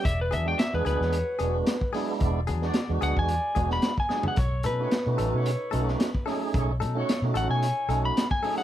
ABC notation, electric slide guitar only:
X:1
M:4/4
L:1/16
Q:"Swing 16ths" 1/4=111
K:Bdor
V:1 name="Electric slide guitar"
e B e =g e B B8 z2 | z6 f g4 b2 g2 f | c2 B12 z2 | z6 f g4 b2 g2 f |]